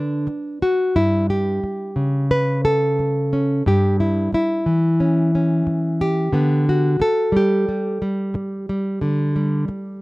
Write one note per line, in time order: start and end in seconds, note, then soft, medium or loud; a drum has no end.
0.00 0.26 D3 medium
0.00 0.62 D4 soft
0.00 0.96 B4 medium
0.27 muted nylon-string guitar stroke medium
0.62 0.96 F#4 medium
0.96 1.62 G2 medium
0.96 1.30 E4 medium
1.30 2.31 G4 medium
1.64 muted nylon-string guitar stroke medium
1.96 3.61 C#3 medium
2.31 2.64 B4 loud
2.65 3.66 A4 loud
2.99 muted nylon-string guitar stroke medium
3.33 3.62 C#4 soft
3.66 4.31 G2 medium
3.66 4.00 G4 medium
4.00 4.33 E4 medium
4.33 6.01 E4 medium
4.33 muted nylon-string guitar stroke medium
4.66 6.30 E3 medium
5.00 5.34 C#4 soft
5.35 6.31 C#4 soft
5.67 muted nylon-string guitar stroke medium
6.01 7.01 G4 medium
6.33 7.00 D3 medium
6.33 6.67 B3 medium
6.69 7.35 F#4 medium
7.00 8.02 A4 medium
7.00 muted nylon-string guitar stroke medium
7.32 7.68 G3 medium
7.37 10.02 G4 medium
7.69 8.01 G3 soft
8.02 8.69 G3 medium
8.34 muted nylon-string guitar stroke medium
8.69 9.02 G3 soft
9.01 9.68 D3 medium
9.01 9.35 G3 soft
9.36 10.02 G3 soft
9.68 muted nylon-string guitar stroke medium